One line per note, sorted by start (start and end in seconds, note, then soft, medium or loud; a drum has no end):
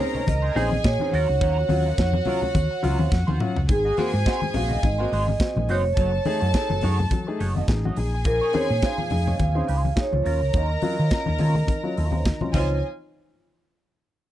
0.00 0.13 C4 medium
0.00 0.14 C#4 medium
0.00 0.14 D#4 medium
0.00 0.14 G#4 medium
0.00 0.53 A#4 medium
0.00 0.29 C5 medium
0.00 0.53 A#5 medium
0.00 muted clean electric guitar stroke medium
0.15 0.26 C#4 medium
0.15 0.20 D#4 soft
0.15 0.25 D#4 medium
0.15 0.20 G#4 soft
0.15 0.25 G#4 medium
0.15 0.25 C#5 medium
0.15 low conga medium
0.27 0.49 C#2 loud
0.27 0.86 D#5 loud
0.27 muted clean electric guitar stroke soft
0.27 kick loud
0.27 closed hi-hat medium
0.27 muted conga soft
0.27 high conga medium
0.42 0.54 C#4 medium
0.42 0.53 D#4 medium
0.42 0.53 G#4 medium
0.42 0.52 C5 medium
0.55 0.77 A#1 medium
0.55 0.70 C4 loud
0.55 0.71 C#4 medium
0.55 0.71 D#4 medium
0.55 1.11 G#4 medium
0.55 0.70 G#4 loud
0.55 0.71 G#4 loud
0.55 0.70 C5 loud
0.55 1.11 G#5 loud
0.55 open hi-hat medium
0.55 muted conga soft
0.55 high conga soft
0.71 muted clean electric guitar stroke medium
0.71 high conga medium
0.84 0.96 A#2 loud
0.84 1.11 C#5 medium
0.84 muted clean electric guitar stroke soft
0.84 kick loud
0.84 snare loud
0.84 closed hi-hat medium
0.99 1.12 C4 medium
0.99 1.12 C#4 medium
0.99 1.12 D#4 medium
0.99 1.12 G#4 medium
0.99 muted clean electric guitar stroke medium
0.99 high conga medium
1.11 1.25 D#2 medium
1.11 1.28 F#3 medium
1.11 1.29 C#4 loud
1.11 1.29 F4 loud
1.11 3.65 F#4 medium
1.11 1.28 A#4 loud
1.11 3.08 C#5 medium
1.11 3.65 F#5 medium
1.11 open hi-hat medium
1.11 muted conga soft
1.29 1.38 C#2 medium
1.29 1.39 D#3 medium
1.29 muted clean electric guitar stroke soft
1.41 1.62 D#2 loud
1.41 1.55 D#3 medium
1.41 1.57 F#3 loud
1.41 1.58 C#4 loud
1.41 1.58 F4 medium
1.41 1.58 A#4 loud
1.41 kick loud
1.41 closed hi-hat medium
1.41 muted conga soft
1.57 1.62 C#4 soft
1.57 1.62 F4 soft
1.69 1.91 D#2 loud
1.69 1.84 F#3 medium
1.69 1.84 C#4 medium
1.69 1.84 F4 medium
1.69 muted clean electric guitar stroke soft
1.69 open hi-hat medium
1.69 high conga medium
1.86 1.96 F#3 medium
1.86 1.96 C#4 medium
1.86 1.96 F4 medium
1.86 1.95 A#4 medium
1.98 2.19 F2 medium
1.98 2.13 D#3 medium
1.98 kick loud
1.98 snare loud
1.98 closed hi-hat medium
1.98 muted conga soft
2.13 muted clean electric guitar stroke soft
2.13 high conga medium
2.25 2.41 F#3 medium
2.25 2.43 F#3 medium
2.25 2.41 C#4 medium
2.25 2.43 C#4 medium
2.25 2.41 F4 loud
2.25 2.43 F4 medium
2.25 open hi-hat medium
2.25 low conga medium
2.29 2.42 A#4 medium
2.42 2.48 C#4 soft
2.42 2.48 F4 soft
2.42 muted clean electric guitar stroke soft
2.42 low conga medium
2.55 2.67 D#2 medium
2.55 muted clean electric guitar stroke soft
2.55 kick loud
2.55 closed hi-hat medium
2.55 muted conga soft
2.55 high conga medium
2.71 muted clean electric guitar stroke soft
2.83 2.95 C#2 medium
2.83 2.99 F#3 medium
2.83 2.98 F#3 medium
2.83 2.98 C#4 medium
2.83 2.99 C#4 medium
2.83 2.98 F4 loud
2.83 2.99 F4 medium
2.83 2.99 A#4 medium
2.83 open hi-hat medium
2.83 high conga medium
2.99 3.09 D#2 loud
2.99 3.10 F#3 medium
2.99 3.10 C#4 medium
2.99 3.09 F4 medium
2.99 3.09 C5 medium
2.99 high conga medium
3.12 3.24 F2 loud
3.12 3.19 C#4 soft
3.12 3.19 F4 soft
3.12 kick loud
3.12 snare medium
3.12 muted conga soft
3.27 3.37 D#2 medium
3.27 3.40 D#3 medium
3.27 3.39 F#3 medium
3.27 3.39 C#4 medium
3.27 3.39 F4 medium
3.27 3.40 C5 medium
3.27 high tom medium
3.27 high conga medium
3.40 3.55 F#3 medium
3.40 3.55 C#4 medium
3.40 3.55 F4 medium
3.40 muted clean electric guitar stroke soft
3.40 mid tom loud
3.40 muted conga soft
3.56 3.65 C#2 medium
3.56 muted clean electric guitar stroke soft
3.56 floor tom loud
3.69 3.90 G#1 loud
3.69 3.84 G#2 medium
3.69 3.84 D#3 medium
3.69 5.65 G#4 loud
3.69 3.99 G#4 medium
3.69 5.65 G#5 loud
3.69 muted clean electric guitar stroke soft
3.69 kick loud
3.69 closed hi-hat medium
3.69 muted conga soft
3.85 3.96 A#3 medium
3.85 3.97 D#4 medium
3.85 3.98 F#4 medium
3.85 3.97 D#5 medium
3.97 4.10 A#3 medium
3.97 4.12 A#3 loud
3.97 4.12 C4 medium
3.97 4.10 D#4 medium
3.97 4.12 F#4 loud
3.97 4.10 F#4 medium
3.97 4.11 C5 medium
3.97 4.57 C5 loud
3.97 open hi-hat medium
3.97 high conga medium
4.14 4.23 G#2 loud
4.14 4.19 C4 soft
4.14 4.19 F#4 soft
4.25 4.41 A#3 medium
4.25 4.41 C4 medium
4.25 4.42 D#4 medium
4.25 4.41 F#4 medium
4.25 4.41 C5 loud
4.25 kick loud
4.25 snare loud
4.25 closed hi-hat medium
4.42 4.54 G#2 medium
4.42 4.54 D#3 medium
4.42 high conga medium
4.54 4.75 A#1 loud
4.54 4.70 C4 medium
4.54 4.70 F#4 medium
4.54 4.84 F5 loud
4.54 muted clean electric guitar stroke soft
4.54 open hi-hat medium
4.54 low conga loud
4.68 4.80 A#3 soft
4.68 4.80 D#4 medium
4.68 4.80 F#4 medium
4.68 4.79 D#5 medium
4.68 low conga medium
4.83 5.04 G#1 medium
4.83 4.98 G#2 medium
4.83 4.98 D#3 medium
4.83 5.72 D#5 loud
4.83 muted clean electric guitar stroke soft
4.83 kick loud
4.83 closed hi-hat medium
4.83 high conga medium
4.98 5.11 A#3 medium
4.98 5.09 A#3 medium
4.98 5.11 C4 medium
4.98 5.09 D#4 medium
4.98 5.09 F#4 medium
4.98 5.11 F#4 medium
4.98 5.08 C5 medium
5.11 5.33 G#1 medium
5.11 5.27 A#3 medium
5.11 5.18 C4 soft
5.11 5.28 D#4 medium
5.11 5.18 F#4 soft
5.11 5.27 F#4 medium
5.11 5.27 C5 medium
5.11 open hi-hat medium
5.11 muted conga soft
5.28 high conga medium
5.40 5.55 C4 medium
5.40 5.55 F#4 medium
5.40 muted clean electric guitar stroke soft
5.40 kick loud
5.40 snare loud
5.40 closed hi-hat medium
5.56 5.65 A#1 medium
5.56 5.68 G#2 medium
5.56 5.68 D#3 medium
5.56 muted clean electric guitar stroke soft
5.56 high conga medium
5.68 5.84 F#1 medium
5.68 5.85 A#3 medium
5.68 5.83 C4 medium
5.68 5.85 D#4 loud
5.68 5.83 F#4 medium
5.68 5.85 F#4 loud
5.68 5.85 C5 loud
5.68 6.80 C#5 medium
5.68 open hi-hat medium
5.84 5.94 F1 loud
5.84 muted clean electric guitar stroke soft
5.96 6.18 F#1 loud
5.96 6.12 F#3 medium
5.96 6.13 A3 medium
5.96 6.13 D#4 medium
5.96 6.13 F#4 medium
5.96 7.64 A4 medium
5.96 6.12 C#5 medium
5.96 7.64 A5 loud
5.96 kick loud
5.96 closed hi-hat medium
5.96 muted conga soft
6.13 muted clean electric guitar stroke medium
6.25 6.40 A3 loud
6.25 6.40 D#4 loud
6.25 6.40 G#4 loud
6.25 muted clean electric guitar stroke soft
6.25 open hi-hat medium
6.25 muted conga soft
6.25 high conga medium
6.40 6.51 F#2 medium
6.40 6.52 A3 medium
6.40 6.51 D#4 medium
6.40 6.47 D#4 soft
6.40 6.51 F#4 medium
6.40 6.47 G#4 soft
6.40 6.51 C#5 medium
6.54 6.69 D#4 medium
6.54 6.69 G#4 medium
6.54 muted clean electric guitar stroke soft
6.54 kick loud
6.54 snare loud
6.54 closed hi-hat medium
6.70 6.79 F#1 loud
6.70 6.82 F#3 medium
6.70 muted clean electric guitar stroke soft
6.70 high conga medium
6.81 7.04 F#2 medium
6.81 6.98 A3 medium
6.81 6.99 D#4 medium
6.81 6.98 D#4 medium
6.81 6.99 F#4 loud
6.81 6.98 G#4 medium
6.81 6.99 C#5 loud
6.81 open hi-hat medium
6.81 low conga loud
6.99 muted clean electric guitar stroke soft
6.99 low conga medium
7.11 7.26 F#3 medium
7.11 muted clean electric guitar stroke soft
7.11 kick loud
7.11 closed hi-hat medium
7.11 muted conga soft
7.11 high conga medium
7.27 7.39 A3 medium
7.27 7.39 D#4 medium
7.27 7.39 G#4 medium
7.27 muted clean electric guitar stroke medium
7.39 7.61 F#1 medium
7.39 7.55 A3 medium
7.39 7.55 D#4 medium
7.39 7.47 D#4 soft
7.39 7.56 F#4 medium
7.39 7.47 G#4 soft
7.39 7.56 C#5 loud
7.39 open hi-hat medium
7.39 muted conga soft
7.56 7.67 A3 medium
7.56 7.67 D#4 medium
7.56 7.66 F#4 medium
7.56 7.66 D#5 medium
7.56 high conga medium
7.68 7.89 A1 loud
7.68 7.83 D#4 medium
7.68 7.83 G#4 medium
7.68 muted clean electric guitar stroke soft
7.68 kick loud
7.68 snare loud
7.68 closed hi-hat medium
7.68 muted conga soft
7.85 7.96 F#3 medium
7.85 7.98 A3 medium
7.85 7.98 D#4 medium
7.85 7.97 F#4 medium
7.85 7.97 D#5 medium
7.85 high conga medium
7.96 8.39 A#1 medium
7.96 8.11 D#4 medium
7.96 9.93 G#4 medium
7.96 8.12 G#4 medium
7.96 9.93 G#5 loud
7.96 muted clean electric guitar stroke soft
7.96 open hi-hat medium
8.14 muted clean electric guitar stroke soft
8.24 8.40 A#2 medium
8.24 8.40 F3 medium
8.24 8.55 A#4 medium
8.24 muted clean electric guitar stroke soft
8.24 kick loud
8.24 closed hi-hat medium
8.24 muted conga soft
8.41 8.52 C#4 medium
8.41 8.53 D#4 medium
8.41 8.54 G#4 medium
8.41 8.54 C#5 loud
8.53 8.68 C4 loud
8.53 8.66 C#4 medium
8.53 8.68 C#4 medium
8.53 8.68 D#4 medium
8.53 8.66 D#4 medium
8.53 8.69 G#4 loud
8.53 8.67 G#4 medium
8.53 8.67 C5 medium
8.53 8.82 C#5 loud
8.53 open hi-hat medium
8.53 high conga medium
8.70 8.79 A#2 medium
8.70 8.76 D#4 soft
8.70 8.76 G#4 soft
8.70 muted clean electric guitar stroke soft
8.82 8.98 C#4 medium
8.82 8.97 D#4 medium
8.82 8.99 D#4 medium
8.82 8.97 G#4 medium
8.82 8.99 G#4 medium
8.82 8.98 C5 medium
8.82 9.42 F5 loud
8.82 kick loud
8.82 snare loud
8.82 closed hi-hat medium
8.82 muted conga soft
8.98 9.10 A#2 medium
8.98 9.10 F3 medium
8.98 high conga medium
9.10 9.33 F2 medium
9.10 9.26 D#4 medium
9.10 9.26 G#4 medium
9.10 muted clean electric guitar stroke soft
9.10 open hi-hat medium
9.10 muted conga soft
9.10 low conga medium
9.27 9.38 C#4 soft
9.27 9.37 D#4 medium
9.27 9.37 G#4 medium
9.27 9.37 C#5 medium
9.27 low conga medium
9.39 9.61 D#2 medium
9.39 9.54 A#2 medium
9.39 9.54 F3 medium
9.39 10.00 F5 loud
9.39 muted clean electric guitar stroke soft
9.39 kick loud
9.39 closed hi-hat medium
9.39 high conga medium
9.55 9.67 C4 medium
9.55 9.67 C#4 medium
9.55 9.66 C#4 medium
9.55 9.67 D#4 medium
9.55 9.65 D#4 medium
9.55 9.67 G#4 medium
9.55 9.65 G#4 medium
9.55 9.65 C5 medium
9.67 9.90 C#2 medium
9.67 9.89 C#4 medium
9.67 9.84 D#4 medium
9.67 9.75 D#4 soft
9.67 9.83 G#4 medium
9.67 9.75 G#4 soft
9.67 9.83 C5 medium
9.67 open hi-hat medium
9.84 muted clean electric guitar stroke soft
9.84 high conga medium
9.96 10.11 D#4 medium
9.96 10.11 G#4 medium
9.96 muted clean electric guitar stroke soft
9.96 kick loud
9.96 snare loud
9.96 closed hi-hat medium
10.01 10.57 C#5 medium
10.12 10.22 C#2 medium
10.12 10.24 A#2 medium
10.12 10.24 F3 medium
10.12 muted clean electric guitar stroke soft
10.12 high conga medium
10.24 10.42 D#2 medium
10.24 10.40 F#3 medium
10.24 10.41 C#4 medium
10.24 10.40 C#4 medium
10.24 10.41 F4 medium
10.24 10.40 F4 medium
10.24 12.50 A#4 medium
10.24 10.40 A#4 loud
10.24 12.50 A#5 loud
10.24 open hi-hat medium
10.24 muted conga soft
10.42 10.51 C#2 loud
10.42 muted clean electric guitar stroke medium
10.53 10.75 D#2 loud
10.53 10.69 D#3 medium
10.53 10.70 F#3 medium
10.53 10.70 C#4 medium
10.53 10.70 F4 medium
10.53 10.69 A#4 medium
10.53 kick loud
10.53 closed hi-hat medium
10.53 muted conga soft
10.58 12.52 D#5 medium
10.70 muted clean electric guitar stroke soft
10.82 10.97 F#3 loud
10.82 10.97 C#4 medium
10.82 10.96 F4 loud
10.82 muted clean electric guitar stroke soft
10.82 open hi-hat medium
10.82 high conga medium
10.98 11.08 D#3 medium
10.98 11.09 F#3 medium
10.98 11.03 C#4 soft
10.98 11.09 C#4 medium
10.98 11.03 F4 soft
10.98 11.09 F4 medium
10.98 11.08 A#4 medium
11.10 11.26 C#4 medium
11.10 11.26 F4 medium
11.10 kick loud
11.10 snare loud
11.10 closed hi-hat medium
11.10 muted conga soft
11.26 11.37 D#2 loud
11.26 11.38 D#3 medium
11.26 muted clean electric guitar stroke soft
11.26 high conga medium
11.38 11.61 D#3 loud
11.38 11.60 F#3 medium
11.38 11.54 C#4 medium
11.38 11.56 C#4 loud
11.38 11.54 F4 medium
11.38 11.55 F4 loud
11.38 11.55 A#4 loud
11.38 open hi-hat medium
11.38 low conga medium
11.55 muted clean electric guitar stroke soft
11.55 low conga medium
11.67 11.82 D#3 medium
11.67 muted clean electric guitar stroke soft
11.67 kick loud
11.67 closed hi-hat medium
11.67 high conga medium
11.83 11.95 F#3 medium
11.83 11.95 C#4 medium
11.83 11.95 F4 medium
11.83 muted clean electric guitar stroke soft
11.96 12.30 D#2 medium
11.96 12.14 F#3 medium
11.96 12.03 C#4 soft
11.96 12.14 C#4 medium
11.96 12.03 F4 soft
11.96 12.13 F4 medium
11.96 12.13 A#4 medium
11.96 open hi-hat medium
12.12 12.24 F#3 medium
12.12 12.23 C#4 medium
12.12 12.23 F4 medium
12.12 12.23 C5 medium
12.12 high conga medium
12.25 12.40 D#3 medium
12.25 muted clean electric guitar stroke soft
12.25 kick loud
12.25 snare loud
12.25 closed hi-hat medium
12.41 12.53 F#3 medium
12.41 12.53 C#4 medium
12.41 12.54 C#4 medium
12.41 12.53 F4 medium
12.41 12.54 F4 medium
12.41 12.54 C5 medium
12.41 high conga medium
12.41 low conga medium
12.53 12.81 C#2 medium
12.53 12.76 F3 medium
12.53 12.72 G#3 medium
12.53 12.76 C4 medium
12.53 12.73 D#4 medium
12.53 12.77 D#4 medium
12.53 12.81 F4 medium
12.53 12.73 F4 medium
12.53 12.73 C5 loud
12.53 12.81 C#5 medium
12.53 12.80 D#5 medium
12.53 12.80 G#5 medium
12.53 kick loud
12.53 crash medium
12.53 high conga medium